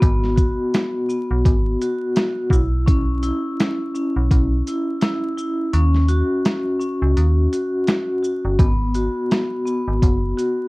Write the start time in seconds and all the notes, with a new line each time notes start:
Already playing: F#4
0.00 G#1 B3, kick, closed hi-hat
0.24 snare
0.36 F#4, kick, closed hi-hat, shaker
0.74 snare, closed hi-hat
1.09 B3, shaker
1.31 B1
1.45 G#1, kick, closed hi-hat
1.81 F#4, closed hi-hat, shaker
2.16 F#4, snare, closed hi-hat
2.50 B1 E4, kick, shaker
2.86 C#4, kick, closed hi-hat
3.23 E4, closed hi-hat, shaker
3.60 snare, closed hi-hat
3.94 C#4, shaker
4.16 B1
4.31 B1, kick, closed hi-hat
4.67 E4, closed hi-hat, shaker
5.01 E4, snare, closed hi-hat
5.38 E4, shaker
5.74 D#2 C#4, closed hi-hat
5.95 snare
6.09 F#4, closed hi-hat, shaker
6.45 snare, closed hi-hat
6.80 C#4, shaker
7.02 C#2
7.17 D#2, closed hi-hat
7.53 F#4, closed hi-hat, shaker
7.87 F#4, snare, closed hi-hat
8.23 F#4, shaker
8.45 G1
8.59 G#1 B3, kick, closed hi-hat
8.94 F#4, closed hi-hat, shaker
9.31 snare, closed hi-hat
9.65 B3, shaker
9.88 G#1
10.02 F#1, kick, closed hi-hat
10.37 F#4, closed hi-hat, shaker